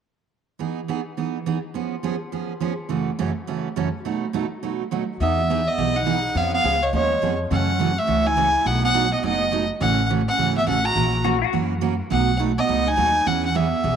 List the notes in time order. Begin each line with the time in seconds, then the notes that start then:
0.59 E3 B3 D#4 G#4
0.88 E3 B3 D#4 G#4
1.17 E3 B3 D#4 G#4
1.46 E3 B3 D#4 G#4
1.74 F3 B3 C#4 G#4
2.03 F3 B3 C#4 G#4
2.32 F3 B3 C#4 G#4
2.60 F3 B3 C#4 G#4
2.89 F#2 C#3 E3 A3 C#4 F#4
3.19 F#2 C#3 E3 A3 C#4 F#4
3.47 F#2 C#3 E3 A3 C#4 F#4
3.76 F#2 C#3 E3 A3 C#4 F#4
4.05 B2 F#3 A3 D#4 F#4
4.33 B2 F#3 A3 D#4 F#4
4.63 B2 F#3 A3 D#4 F#4
4.91 B2 F#3 A3 D#4 F#4
5.20 E2 E3 B3 D#4 G#4 E5
5.50 E3 B3 D#4 G#4
5.67 B3 D#5
5.78 B1 E3 B3 D#4 G#4
5.96 D#4 F#5
6.06 E3 B3 D#4 G#4
6.35 F2 F3 B3 C#4 G#4 F5
6.54 B3 F5
6.64 C#2 F3 B3 C#4 G#4
6.83 G#3 C#5
6.93 D#2 F3 G#3 B3 C#4 G#4 C#5
7.22 F2 F3 B3 C#4 G#4
7.51 F#2 C#3 E3 A3 C#4 F#4 F#5
7.79 C#3 E3 A3 C#4 F#4
7.98 A3 E5
8.07 C#2 C#3 E3 A3 C#4 F#4
8.26 E4 G#5
8.37 C#3 E3 A3 C#4 F#4
8.65 B1 B2 F#3 A3 B3 D#4 F#4 F#5
8.84 B3 F#5
8.94 B2 F#3 A3 D#4 F#4
9.13 B3 D#5
9.23 F#1 B2 F#3 A3 B3 D#4 F#4 D#5
9.52 B2 F#3 A3 D#4 F#4
9.80 A1 C#3 E3 A3 C#4 F#4 F#5
10.09 C#3 E3 A3 C#4 F#4
10.28 C#4 F#5
10.38 G#1 C#3 E3 A3 C#4 F#4
10.57 B3 E5
10.67 A1 C#3 E3 A3 C#4 F#4 F#5
10.85 F#4 A#5
10.95 A#1 E3 A#3 C#4 F#4 A#4
11.24 E3 A#3 C#4 F#4 A#4
11.42 F#4
11.53 F#2 E3 A#3 C#4 F#4 A#4
11.81 E3 A#3 C#4 F#4 A#4
12.10 B1 B2 F#3 A3 B3 D#4 F#4 F#5
12.39 B2 F#3 A3 D#4 F#4
12.58 B3 D#5
12.68 C#2 B2 F#3 A3 D#4 F#4
12.87 D#4 G#5
12.96 D#2 B2 F#3 A3 D#4 F#4
13.26 E2 E3 B3 C#4 G#4 F#5
13.44 C#4 F#5
13.55 E3 B3 C#4 G#4 E5
13.83 B1 E3 B3 C#4 G#4